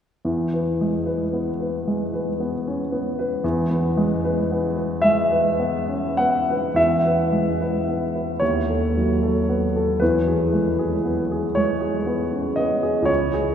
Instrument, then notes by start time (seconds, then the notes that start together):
grand piano
0.25 E2
0.54 B4
0.81 G#3
1.06 B4
1.33 B3
1.60 B4
1.88 G#3
2.14 B4
2.40 B3
2.67 C#4
2.92 B3
3.19 B4
3.44 E2
3.71 B3
3.97 G#3
4.25 B4
4.52 B3
4.77 B4
5.02 G#3 E5
5.31 B4
5.59 B3
5.88 C#4
6.17 B3 F#5
6.50 B4
6.74 E2 E5
7.05 B4
7.32 G#3
7.61 B4
7.88 B3
8.16 B4
8.40 D#2 C#5
8.69 A4
8.97 F#3
9.23 A4
9.49 B3
9.76 A4
10.00 E2 B4
10.28 G#4
10.53 G#3
10.79 G#4
11.05 B3
11.32 G#4
11.55 G#3 C#5
11.81 G#4
12.07 B3
12.33 C#4
12.56 B3 D#5
12.83 G#4
13.02 C#2 C#5
13.34 G#4